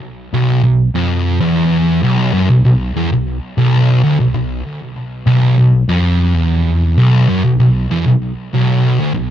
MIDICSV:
0, 0, Header, 1, 2, 480
1, 0, Start_track
1, 0, Key_signature, 2, "minor"
1, 0, Tempo, 618557
1, 854, Time_signature, 4, 2, 24, 8
1, 7220, End_track
2, 0, Start_track
2, 0, Title_t, "Distorted electric guitar"
2, 0, Program_c, 0, 30
2, 260, Note_on_c, 0, 35, 107
2, 485, Note_off_c, 0, 35, 0
2, 494, Note_on_c, 0, 35, 74
2, 686, Note_off_c, 0, 35, 0
2, 738, Note_on_c, 0, 41, 97
2, 1089, Note_off_c, 0, 41, 0
2, 1093, Note_on_c, 0, 40, 107
2, 1566, Note_off_c, 0, 40, 0
2, 1572, Note_on_c, 0, 35, 107
2, 1806, Note_off_c, 0, 35, 0
2, 1811, Note_on_c, 0, 42, 102
2, 1925, Note_off_c, 0, 42, 0
2, 1942, Note_on_c, 0, 35, 70
2, 2047, Note_off_c, 0, 35, 0
2, 2056, Note_on_c, 0, 35, 70
2, 2247, Note_off_c, 0, 35, 0
2, 2299, Note_on_c, 0, 40, 107
2, 2409, Note_off_c, 0, 40, 0
2, 2422, Note_on_c, 0, 35, 75
2, 2610, Note_off_c, 0, 35, 0
2, 2775, Note_on_c, 0, 35, 109
2, 3128, Note_off_c, 0, 35, 0
2, 3131, Note_on_c, 0, 38, 99
2, 3246, Note_off_c, 0, 38, 0
2, 3258, Note_on_c, 0, 35, 72
2, 3359, Note_off_c, 0, 35, 0
2, 3369, Note_on_c, 0, 35, 75
2, 3564, Note_off_c, 0, 35, 0
2, 4086, Note_on_c, 0, 35, 113
2, 4320, Note_off_c, 0, 35, 0
2, 4329, Note_on_c, 0, 35, 77
2, 4525, Note_off_c, 0, 35, 0
2, 4568, Note_on_c, 0, 41, 90
2, 4927, Note_off_c, 0, 41, 0
2, 4927, Note_on_c, 0, 40, 107
2, 5405, Note_off_c, 0, 40, 0
2, 5415, Note_on_c, 0, 35, 107
2, 5650, Note_off_c, 0, 35, 0
2, 5656, Note_on_c, 0, 42, 105
2, 5770, Note_off_c, 0, 42, 0
2, 5779, Note_on_c, 0, 35, 80
2, 5888, Note_off_c, 0, 35, 0
2, 5898, Note_on_c, 0, 35, 72
2, 6090, Note_off_c, 0, 35, 0
2, 6136, Note_on_c, 0, 40, 115
2, 6250, Note_off_c, 0, 40, 0
2, 6260, Note_on_c, 0, 35, 76
2, 6451, Note_off_c, 0, 35, 0
2, 6631, Note_on_c, 0, 35, 118
2, 6977, Note_off_c, 0, 35, 0
2, 6983, Note_on_c, 0, 38, 105
2, 7093, Note_off_c, 0, 38, 0
2, 7097, Note_on_c, 0, 35, 80
2, 7218, Note_off_c, 0, 35, 0
2, 7220, End_track
0, 0, End_of_file